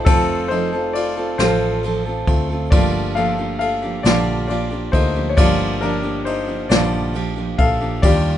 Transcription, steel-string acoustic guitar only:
0.06 0.49 F3 medium
0.06 0.50 C4 medium
0.06 0.51 F4 medium
0.06 0.51 A4 medium
0.50 0.72 F3 medium
0.50 0.73 C4 medium
0.50 0.73 F4 medium
0.50 0.71 A4 medium
0.72 1.18 C4 soft
0.72 1.17 F4 soft
0.72 1.15 A4 medium
1.16 1.39 C4 soft
1.16 1.39 F4 soft
1.16 1.39 A4 medium
1.39 1.82 F3 medium
1.39 1.83 C4 medium
1.39 1.84 F4 medium
1.39 1.84 A4 loud
1.83 2.05 F3 medium
1.83 2.06 C4 medium
1.83 2.06 F4 medium
1.83 2.04 A4 medium
2.05 2.51 C4 soft
2.05 2.50 F4 soft
2.05 2.48 A4 medium
2.49 2.72 C4 soft
2.49 2.72 F4 soft
2.49 2.72 A4 medium
2.72 3.16 G2 medium
2.72 3.16 D3 medium
2.72 3.15 F3 medium
2.72 3.16 A#3 medium
2.72 3.17 D4 medium
2.72 3.17 G4 medium
3.16 3.38 F3 medium
3.16 3.39 A#3 medium
3.16 3.38 D4 medium
3.16 3.37 G4 medium
3.38 3.84 F3 soft
3.38 3.83 A#3 soft
3.38 3.82 D4 soft
3.38 3.81 G4 medium
3.82 4.04 F3 soft
3.82 4.05 A#3 soft
3.82 4.05 D4 soft
3.82 4.04 G4 medium
4.04 4.49 G2 medium
4.04 4.49 D3 medium
4.04 4.47 F3 medium
4.04 4.48 A#3 medium
4.04 4.49 D4 medium
4.04 4.50 G4 medium
4.48 4.71 F3 medium
4.48 4.71 A#3 medium
4.48 4.70 D4 medium
4.48 4.69 G4 medium
4.70 5.16 F3 soft
4.70 5.15 A#3 soft
4.70 5.15 D4 soft
4.70 5.14 G4 medium
5.15 5.36 F3 soft
5.15 5.37 A#3 soft
5.15 5.37 D4 soft
5.15 5.37 G4 medium
5.37 5.81 G2 medium
5.37 5.82 D3 medium
5.37 5.80 F3 medium
5.37 5.81 A#3 medium
5.37 5.82 D4 medium
5.37 5.82 G4 medium
5.81 6.03 F3 medium
5.81 6.04 A#3 medium
5.81 6.03 D4 medium
5.81 6.02 G4 medium
6.03 6.49 F3 soft
6.03 6.48 A#3 soft
6.03 6.47 D4 medium
6.03 6.46 G4 medium
6.47 6.69 F3 soft
6.47 6.70 A#3 soft
6.47 6.70 D4 medium
6.47 6.70 G4 medium
6.70 7.14 G2 medium
6.70 7.15 D3 medium
6.70 7.12 F3 medium
6.70 7.13 A#3 medium
6.70 7.14 D4 medium
6.70 7.15 G4 medium
7.14 7.36 F3 medium
7.14 7.37 A#3 medium
7.14 7.36 D4 medium
7.14 7.35 G4 medium
7.36 7.82 F3 soft
7.36 7.81 A#3 soft
7.36 7.80 D4 medium
7.36 7.79 G4 medium
7.80 8.03 F3 soft
7.80 8.03 A#3 soft
7.80 8.03 D4 medium
7.80 8.03 G4 medium
8.03 8.38 D#3 medium
8.03 8.38 G3 medium
8.03 8.38 A#3 medium
8.03 8.38 D4 medium
8.03 8.38 G4 medium

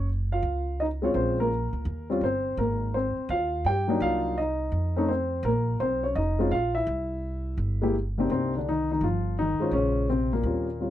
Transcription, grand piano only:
0.32 0.77 F4 medium
0.32 0.81 F5 medium
0.80 0.87 D#4 medium
0.80 0.85 D#5 medium
1.02 1.48 G#3 medium
1.02 1.15 C4 medium
1.02 1.49 C#4 medium
1.02 1.49 F4 medium
1.02 1.10 C#5 medium
1.15 1.38 C4 medium
1.15 1.37 C5 medium
1.40 2.08 A#3 medium
1.40 2.07 A#4 medium
2.10 2.21 G3 medium
2.10 2.21 C4 medium
2.10 2.22 C#4 medium
2.10 2.22 F4 medium
2.24 2.57 C4 medium
2.24 2.57 C5 medium
2.58 2.93 A#3 medium
2.58 2.95 A#4 medium
2.94 3.29 C4 medium
2.94 3.31 C5 medium
3.30 3.64 F4 medium
3.30 3.67 F5 medium
3.66 4.01 G4 medium
3.66 3.99 G5 medium
3.88 4.34 F#3 medium
3.88 4.35 A#3 medium
3.88 4.35 D4 medium
3.88 4.35 D#4 medium
4.02 4.36 F4 medium
4.02 4.39 F5 loud
4.38 4.97 D#4 medium
4.38 5.11 D#5 medium
4.96 5.08 A3 medium
4.96 5.08 C4 medium
4.96 5.08 C#4 medium
4.96 5.09 D#4 medium
5.09 5.43 C4 medium
5.09 5.46 C5 medium
5.45 5.79 A#3 medium
5.45 5.78 A#4 medium
5.80 6.03 C4 medium
5.80 6.04 C5 medium
6.03 6.16 C#4 medium
6.03 6.16 C#5 medium
6.15 6.50 D#4 medium
6.15 6.53 D#5 medium
6.39 6.50 G#3 medium
6.39 6.51 C4 medium
6.39 6.51 C#4 medium
6.39 6.51 F4 medium
6.52 6.75 F4 medium
6.52 6.74 F5 medium
6.75 7.81 E4 medium
6.75 7.90 E5 medium
7.82 7.93 G#3 medium
7.82 7.93 A#3 medium
7.82 7.94 E4 medium
7.82 7.94 G4 medium
8.18 8.31 C3 medium
8.18 8.64 A#3 medium
8.18 8.30 C4 medium
8.18 8.55 D4 medium
8.18 8.64 D#4 medium
8.18 8.64 G4 medium
8.31 8.53 C3 medium
8.31 8.53 C4 medium
8.57 8.67 D3 medium
8.57 8.68 D4 medium
8.69 8.90 D#3 medium
8.69 8.89 D#4 medium
8.92 9.03 D#3 medium
8.92 9.03 D#4 medium
9.04 9.36 F3 medium
9.04 9.36 F4 medium
9.39 9.72 D#3 medium
9.39 9.71 D#4 medium
9.60 10.06 G#3 medium
9.60 9.72 C#4 medium
9.60 10.07 F4 medium
9.60 10.06 C5 medium
9.73 10.07 C#3 medium
9.73 10.06 C#4 medium
10.10 10.32 C3 medium
10.10 10.31 C4 medium
10.33 10.90 A#2 medium
10.33 10.90 A#3 medium
10.45 10.66 G3 soft
10.45 10.66 C4 soft
10.45 10.66 C#4 soft
10.45 10.67 F4 medium
10.80 10.90 G3 medium
10.80 10.90 C4 soft
10.80 10.90 C#4 soft
10.80 10.90 F4 medium

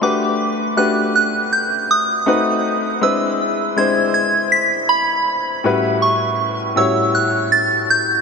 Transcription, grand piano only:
0.01 0.47 A3 medium
0.01 0.48 D4 medium
0.01 0.48 F#4 medium
0.01 0.48 G4 medium
0.01 0.48 B4 medium
0.77 1.68 A3 medium
0.77 1.68 D4 medium
0.77 1.68 F#4 medium
0.77 1.69 G4 medium
0.77 1.69 B4 medium
2.26 2.86 A3 medium
2.26 2.86 C4 medium
2.26 2.87 D#4 medium
2.26 2.87 F#4 medium
2.26 2.87 B4 medium
3.01 3.47 G#3 medium
3.01 3.47 C4 medium
3.01 3.48 D4 medium
3.01 3.48 E4 medium
3.01 3.48 B4 medium
3.76 4.68 G#3 medium
3.76 4.68 C4 medium
3.76 4.69 D4 medium
3.76 4.69 E4 medium
3.76 4.69 C5 medium
5.64 6.54 A2 medium
5.64 6.54 G3 medium
5.64 6.55 C#4 medium
5.64 6.55 E4 medium
5.64 6.55 F#4 medium
5.64 6.55 B4 medium
6.76 7.68 A2 medium
6.76 7.68 G3 medium
6.76 7.68 C#4 medium
6.76 7.68 E4 medium
6.76 7.69 F#4 medium
6.76 7.69 C#5 medium

